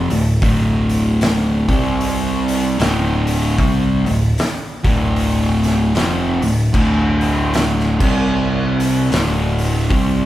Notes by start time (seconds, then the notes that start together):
0.10 D1 D2 A2, open hi-hat
0.42 D1 D2 A2 D3, kick, open hi-hat
0.89 open hi-hat
1.21 snare, open hi-hat
1.68 C2 C3 G3 C4, kick, open hi-hat
2.01 open hi-hat
2.48 open hi-hat
2.79 D1 D2 A2 D3, snare, open hi-hat
3.27 open hi-hat
3.58 C2 C3 G3 C4, kick, open hi-hat
4.06 D1 D2 A2, open hi-hat
4.38 snare, open hi-hat
4.84 D1 D2 A2 D3, kick, open hi-hat
5.16 open hi-hat
5.63 snare, open hi-hat
5.95 F1 F2 C3 F3, snare, open hi-hat
6.41 D1 D2 A2, open hi-hat
6.73 D1 D2 A2 D3, kick, crash
7.21 open hi-hat
7.54 snare, open hi-hat
7.80 snare
8.00 C2 C3 G3 C4, kick, crash
8.80 open hi-hat
9.11 D1 D2 A2 D3, snare, open hi-hat
9.59 open hi-hat
9.90 C2 C3 G3 C4, kick, open hi-hat